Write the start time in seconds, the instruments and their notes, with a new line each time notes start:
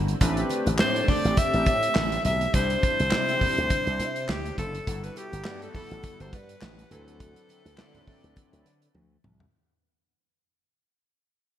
Already playing: slap bass G1, string machine D3 C4 E4 F#4 C5
0.08 closed hi-hat
0.21 slap bass A1, analog polysynth A3 C4 D4 G4 B4, string machine A3 C4 G4, kick, closed hi-hat, muted conga
0.37 closed hi-hat
0.50 closed hi-hat, muted conga
0.66 slap bass A1, closed hi-hat, high conga
0.79 slap bass A2, analog polysynth A3 C4 D4 G4 D5, alto saxophone C5, snare, clap, muted conga
0.96 closed hi-hat
1.08 alto saxophone D5, kick, open hi-hat, muted conga, high conga, low conga
1.25 slap bass A1, closed hi-hat
1.37 alto saxophone E5, kick, closed hi-hat, high conga
1.54 slap bass A1, closed hi-hat
1.66 slap bass A2, kick, closed hi-hat, muted conga
1.83 closed hi-hat
1.95 slap bass A1, snare, clap, high conga
2.12 closed hi-hat
2.25 slap bass B1, alto saxophone E5, closed hi-hat, high conga, low conga
2.41 closed hi-hat
2.53 slap bass C2, string machine C3 D4 E4, analog polysynth G3 C4 D4 E4 C5, alto saxophone C5, kick, closed hi-hat
2.70 closed hi-hat
2.83 kick, closed hi-hat, muted conga
3.00 slap bass C2, closed hi-hat, high conga
3.11 slap bass C3, analog polysynth G3 C4 D4 E4 C5, snare, clap, muted conga
3.29 closed hi-hat
3.41 kick, open hi-hat, high conga, low conga
3.58 slap bass D2, closed hi-hat
3.70 kick, closed hi-hat, high conga
3.87 slap bass C2, closed hi-hat
4.00 slap bass C3, closed hi-hat, muted conga
4.16 closed hi-hat
4.29 slap bass D2, alto saxophone G4, snare, clap, muted conga, high conga
4.46 closed hi-hat
4.58 slap bass F#1, alto saxophone A4, kick, closed hi-hat, high conga, low conga
4.75 closed hi-hat
4.87 slap bass G1, analog polysynth G3 B3 E4 F#4 A4, string machine G3 F#5, kick, closed hi-hat, muted conga
5.04 alto saxophone B4, closed hi-hat
5.16 alto saxophone G4, closed hi-hat, muted conga
5.33 slap bass G1, closed hi-hat, high conga
5.45 slap bass G2, analog polysynth G3 B3 E4 F#4 A4, snare, clap
5.62 alto saxophone A4, closed hi-hat
5.75 alto saxophone A4, kick, open hi-hat, high conga, low conga
5.91 slap bass A1, closed hi-hat
6.03 kick, closed hi-hat, muted conga, high conga
6.20 slap bass G1, alto saxophone C5, closed hi-hat
6.33 slap bass G2, alto saxophone B4, kick, closed hi-hat
6.49 closed hi-hat
6.62 slap bass A1, snare, clap, muted conga, high conga
6.79 closed hi-hat
6.90 slap bass D2, string machine D3 C4 E4 B4, analog polysynth F#3 C4 D4 E4 B4, alto saxophone A4, closed hi-hat, muted conga, high conga, low conga
7.08 closed hi-hat
7.20 kick, closed hi-hat, muted conga
7.36 closed hi-hat
7.49 closed hi-hat, muted conga
7.65 slap bass D2, closed hi-hat, high conga
7.78 slap bass D3, analog polysynth F#3 C4 D4 E4 D5, snare, clap
7.94 closed hi-hat, low conga
8.07 kick, open hi-hat, high conga, low conga
8.24 slap bass D2, closed hi-hat
8.36 kick, closed hi-hat, muted conga, high conga
8.53 slap bass D2, closed hi-hat
8.66 slap bass D3, closed hi-hat, muted conga
8.82 closed hi-hat
8.95 slap bass D2, high tom, high conga
9.24 slap bass C2, mid tom, muted conga, high conga, low conga
9.40 floor tom